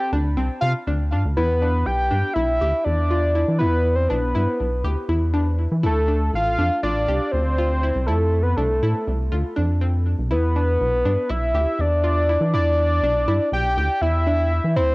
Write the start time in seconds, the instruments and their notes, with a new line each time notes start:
Already playing: analog synth lead G5
0.13 analog synth bass D2, synth arpeggio sound D4
0.37 analog synth bass C2, synth arpeggio sound C4
0.61 analog synth bass C3, analog synth lead F5
0.87 analog synth bass D2, synth arpeggio sound D4
1.12 analog synth bass G2, synth arpeggio sound D4
1.25 analog synth bass D2
1.37 analog synth bass E2, synth arpeggio sound E4, analog synth lead B4
1.62 synth arpeggio sound D4
1.86 analog synth bass B1, analog synth lead G5
2.11 analog synth bass G2, synth arpeggio sound D4
2.34 analog synth bass B1, synth arpeggio sound E4, analog synth lead E5
2.61 analog synth bass D2, synth arpeggio sound G4
2.84 analog synth bass E2, analog synth lead D5
3.11 synth arpeggio sound F4
3.35 synth arpeggio sound E4
3.48 analog synth bass E3
3.58 analog synth bass E2, synth arpeggio sound E4, analog synth lead B4
3.95 analog synth lead C5
4.09 analog synth bass B1, synth arpeggio sound D4, analog synth lead B4
4.35 analog synth bass G2, synth arpeggio sound E4
4.60 analog synth bass B1
4.84 analog synth bass D2, synth arpeggio sound G4
5.09 analog synth bass E2, synth arpeggio sound E4
5.34 synth arpeggio sound D4
5.72 analog synth bass E3
5.83 analog synth bass D2, synth arpeggio sound E4, analog synth lead A4
6.08 synth arpeggio sound D4
6.34 analog synth bass A1, analog synth lead F5
6.58 analog synth bass F2, synth arpeggio sound D4
6.83 analog synth bass A1, synth arpeggio sound F4, analog synth lead D5
7.08 analog synth bass C2, synth arpeggio sound G4
7.32 analog synth bass D2, analog synth lead C5
7.58 synth arpeggio sound F4
7.83 synth arpeggio sound E4
7.95 analog synth bass C2
8.06 analog synth bass F2, synth arpeggio sound E4, analog synth lead A4
8.43 analog synth lead B4
8.56 analog synth bass C2, synth arpeggio sound D4, analog synth lead A4
8.82 analog synth bass A2, synth arpeggio sound E4
9.07 analog synth bass C2
9.32 analog synth bass D2, synth arpeggio sound F4
9.56 analog synth bass F2, synth arpeggio sound D4
9.81 synth arpeggio sound C4
10.19 analog synth bass B1
10.31 analog synth bass E2, synth arpeggio sound E4, analog synth lead B4
10.56 synth arpeggio sound D4
10.81 analog synth bass B1
11.05 analog synth bass G2, synth arpeggio sound D4
11.29 analog synth bass B1, synth arpeggio sound E4, analog synth lead E5
11.54 analog synth bass D2, synth arpeggio sound G4
11.79 analog synth bass E2, analog synth lead D5
12.04 synth arpeggio sound F4
12.29 synth arpeggio sound E4
12.41 analog synth bass E3
12.54 analog synth bass E2, synth arpeggio sound E4, analog synth lead D5
13.03 analog synth bass B1, synth arpeggio sound D4
13.28 analog synth bass G2, synth arpeggio sound E4
13.52 analog synth bass B1, analog synth lead G5
13.77 analog synth bass D2, synth arpeggio sound G4
14.01 analog synth bass E2, synth arpeggio sound E4, analog synth lead E5
14.27 synth arpeggio sound D4
14.64 analog synth bass E3
14.76 analog synth bass D2, synth arpeggio sound E4, analog synth lead C5